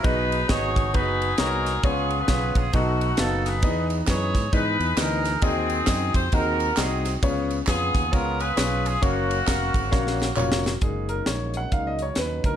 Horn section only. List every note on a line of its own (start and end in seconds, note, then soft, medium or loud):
0.04 0.90 D#4 medium
0.04 0.49 G#4 medium
0.04 0.49 B4 loud
0.50 1.36 F#4 medium
0.50 0.94 G#4 medium
0.50 0.91 C#5 loud
0.94 1.38 D#4 medium
0.94 1.80 G#4 medium
0.94 1.39 B4 loud
1.39 1.81 D#4 medium
1.39 1.81 F#4 medium
1.39 1.81 A#4 loud
1.84 2.70 B3 medium
1.84 2.19 F4 medium
1.84 2.19 G#4 medium
2.20 2.70 F4 medium
2.20 2.55 G#4 medium
2.20 2.57 B4 loud
2.56 2.74 G#4 medium
2.74 3.60 A3 medium
2.74 3.45 D#4 medium
2.74 3.19 F#4 medium
3.19 3.46 A4 medium
3.46 4.32 D#4 medium
3.46 3.91 G#4 medium
3.46 3.86 B4 medium
4.08 4.52 G#4 medium
4.08 4.50 C#5 loud
4.53 4.97 D#4 medium
4.53 5.39 G#4 medium
4.53 4.98 B4 loud
4.98 5.40 D#4 medium
4.98 5.43 A#4 loud
5.43 6.29 C4 medium
5.43 6.15 G#4 medium
6.16 6.32 C5 medium
6.33 7.19 F#4 medium
6.33 6.78 A#4 medium
6.78 7.20 C4 medium
6.78 7.14 G#4 medium
7.68 8.53 B3 medium
7.68 8.12 F4 medium
7.68 8.10 G#4 loud
8.13 8.39 F4 medium
8.13 8.40 A#4 loud
8.40 8.98 F4 medium
8.40 8.84 G#4 medium
8.40 8.85 B4 loud
8.85 9.02 G#4 loud
9.02 10.33 A#3 medium
9.02 10.33 C#4 medium
9.02 10.37 F#4 loud